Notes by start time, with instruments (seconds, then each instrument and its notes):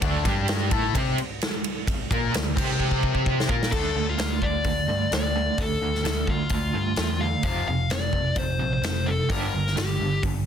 0.01 picked electric bass D2, distorted electric guitar D3 A3 D4, kick, ride
0.24 picked electric bass G2, distorted electric guitar G3 D4 G4, kick, snare, ride
0.48 snare, ride
0.71 picked electric bass A2, distorted electric guitar A3 E4 A4, kick, ride
0.94 picked electric bass C3, distorted electric guitar C4 G4 C5, kick, ride
1.18 ride
1.41 snare, ride
1.64 ride
1.87 kick, ride
2.11 picked electric bass A#2, distorted electric guitar A#3 F4 A#4, kick, ride
2.33 picked electric bass D2, distorted electric guitar D3 A3, snare, ride
2.56 picked electric bass C3, distorted electric guitar C4 G4 C5, kick, crash
2.80 kick
2.91 kick
3.03 kick
3.15 kick
3.26 kick
3.40 snare
3.49 picked electric bass A#2, distorted electric guitar A#3 F4 A#4, kick
3.63 snare
3.72 picked electric bass D2, distorted electric guitar D3 A3 D4, lead electric guitar A4, kick, crash
3.95 picked electric bass D2, distorted electric guitar D3 A3
4.10 lead electric guitar F4
4.18 picked electric bass D2, distorted electric guitar D3 A3, snare, open hi-hat
4.42 picked electric bass D2, distorted electric guitar D3 A3, lead electric guitar D5, kick
4.64 picked electric bass D2, distorted electric guitar D3 A3, kick, open hi-hat
4.87 picked electric bass G2, distorted electric guitar D3 A3
5.11 picked electric bass D2, distorted electric guitar D3 A3, lead electric guitar D5, snare, open hi-hat
5.35 distorted electric guitar D3 A3
5.58 picked electric bass D2, distorted electric guitar D3 A3, lead electric guitar A4, kick, open hi-hat
5.82 picked electric bass D2, distorted electric guitar D3 A3
5.95 snare
6.04 picked electric bass D2, distorted electric guitar D3 A3, snare, open hi-hat
6.27 picked electric bass D2, distorted electric guitar D3 A3, lead electric guitar F4, kick
6.49 picked electric bass D2, distorted electric guitar D3 A3, kick, open hi-hat
6.73 picked electric bass G2, distorted electric guitar D3 A3
6.96 picked electric bass E2, distorted electric guitar D3 A3, snare, open hi-hat
7.21 distorted electric guitar D3 A3, lead electric guitar F5
7.43 picked electric bass F1, distorted electric guitar F2 C3 F3, lead electric guitar F5, kick, open hi-hat
7.68 picked electric bass F1, distorted electric guitar F2 C3, lead electric guitar F5
7.90 picked electric bass F1, distorted electric guitar F2 C3, lead electric guitar D5, snare, open hi-hat
8.13 picked electric bass F1, distorted electric guitar F2 C3, kick
8.36 picked electric bass F1, distorted electric guitar F2 C3, lead electric guitar C5, kick, open hi-hat
8.59 picked electric bass A#1, distorted electric guitar F2 C3
8.73 lead electric guitar C5
8.82 picked electric bass F1, distorted electric guitar F2 C3, snare, open hi-hat
9.06 distorted electric guitar F2 C3, lead electric guitar A4
9.30 picked electric bass G1, distorted electric guitar G2 D3 G3, lead electric guitar A#4, kick, open hi-hat
9.54 picked electric bass G1, distorted electric guitar G2 D3
9.67 snare
9.77 picked electric bass G1, distorted electric guitar G2 D3, lead electric guitar G4, snare, open hi-hat
10.00 picked electric bass G1, distorted electric guitar G2 D3
10.23 picked electric bass G1, distorted electric guitar G2 D3, kick, open hi-hat